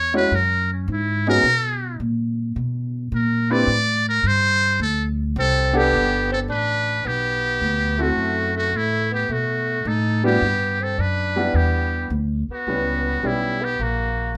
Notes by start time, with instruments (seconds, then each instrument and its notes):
Already playing: upright bass E2, muted trumpet C#5
0.14 grand piano G#3 C#4 E4 F#4 C#5, muted trumpet B4
0.31 upright bass F#2, muted trumpet A#4
0.73 muted trumpet C#4
0.88 upright bass G#2
0.92 muted trumpet E4
1.27 grand piano B3 C#4 D#4 F#4 G#4, muted trumpet A#4
1.44 upright bass B2
2.00 upright bass A#2
2.56 upright bass B2
3.12 upright bass A#2, muted trumpet A#4
3.50 grand piano C4 D4 E4 G4 B4, muted trumpet D5
3.67 upright bass A2
4.09 muted trumpet A#4
4.23 upright bass G2, muted trumpet C5
4.79 upright bass D2, muted trumpet A4
5.36 upright bass C2, tenor saxophone C4, muted trumpet A4
5.73 grand piano B3 D4 G4 A4 F#5, tenor saxophone B3
5.77 muted trumpet G4
5.92 upright bass G1
6.31 tenor saxophone C4, muted trumpet A4
6.48 upright bass A1, tenor saxophone D4, muted trumpet B4
7.05 upright bass B1, tenor saxophone B3, muted trumpet G4
7.61 upright bass D2
7.98 tenor saxophone A3, grand piano A3 C4 E4 F#4 A4, muted trumpet F#4
8.16 upright bass F#2
8.54 tenor saxophone A3, muted trumpet F#4
8.73 upright bass A2, tenor saxophone A3, muted trumpet E4
9.11 tenor saxophone B3, muted trumpet G4
9.29 upright bass B2, tenor saxophone A3, muted trumpet F#4
9.85 upright bass A2, tenor saxophone D#4, muted trumpet A4
10.24 grand piano G3 B3 D4 E4 F#4, tenor saxophone B3, muted trumpet G4
10.42 upright bass G2
10.80 tenor saxophone C4, muted trumpet A4
10.98 upright bass F#2, tenor saxophone D4, muted trumpet B4
11.36 grand piano G3 B3 D4 E4 F#5
11.54 upright bass E2, tenor saxophone B3, muted trumpet G4
12.10 upright bass D2
12.49 tenor saxophone B3, muted upright bass stroke
12.53 muted trumpet F#4
12.67 upright bass C#2, grand piano G3 B3 C#4 E4 B4
13.22 upright bass B1, grand piano G3 B3 C#4 E4 G4, tenor saxophone G3
13.27 muted trumpet E4
13.61 tenor saxophone B3, muted trumpet G4
13.79 upright bass A#1, tenor saxophone A#3, muted trumpet F#4